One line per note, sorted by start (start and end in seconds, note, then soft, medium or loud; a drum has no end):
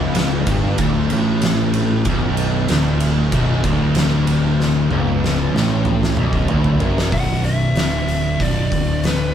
0.00 0.43 C#1 medium
0.00 0.46 C#2 loud
0.00 7.09 F#3 medium
0.00 7.08 B3 medium
0.00 7.08 D4 medium
0.15 snare loud
0.15 ride loud
0.46 0.76 G1 loud
0.46 0.77 G2 loud
0.46 kick loud
0.46 ride medium
0.78 1.08 D1 medium
0.78 1.10 D2 loud
0.78 kick loud
0.78 ride loud
1.10 2.01 A1 loud
1.10 2.05 A2 loud
1.10 ride medium
1.42 snare loud
1.42 ride loud
1.74 ride medium
2.05 2.65 B0 loud
2.05 2.68 B1 loud
2.05 kick loud
2.05 ride loud
2.37 ride medium
2.68 3.28 D1 loud
2.68 3.32 D2 loud
2.68 snare loud
2.68 ride medium
3.00 ride medium
3.32 3.62 B0 medium
3.32 3.62 B1 loud
3.32 kick loud
3.32 ride loud
3.63 4.87 D1 loud
3.63 4.89 D2 loud
3.63 kick loud
3.63 ride medium
3.95 snare loud
3.95 ride medium
4.27 ride medium
4.60 snare medium
4.90 5.50 C#1 loud
4.90 5.55 C#2 loud
4.90 high tom medium
5.24 snare medium
5.53 6.13 A1 loud
5.53 6.17 A2 loud
5.53 snare medium
5.85 mid tom medium
6.03 snare medium
6.16 6.47 B0 loud
6.16 6.49 B1 loud
6.16 mid tom loud
6.33 kick medium
6.48 6.79 D1 loud
6.48 6.80 D2 loud
6.48 floor tom loud
6.64 floor tom medium
6.80 7.10 F#1 loud
6.80 7.12 F#2 loud
6.80 floor tom loud
6.98 snare medium
7.12 7.72 B0 loud
7.12 7.75 B1 loud
7.12 9.34 F#3 medium
7.12 9.34 B3 medium
7.12 9.34 D4 medium
7.12 7.45 F#5 loud
7.12 kick loud
7.12 open hi-hat medium
7.44 8.43 E5 loud
7.44 open hi-hat soft
7.75 8.36 D1 medium
7.75 8.39 D2 loud
7.75 snare loud
7.75 open hi-hat medium
8.08 open hi-hat medium
8.39 8.70 B0 medium
8.39 8.71 B1 loud
8.39 9.05 D5 loud
8.39 kick loud
8.39 open hi-hat medium
8.71 9.34 D1 medium
8.71 9.34 D2 loud
8.71 kick loud
8.71 open hi-hat medium
9.03 9.34 B4 medium
9.03 snare loud
9.03 open hi-hat medium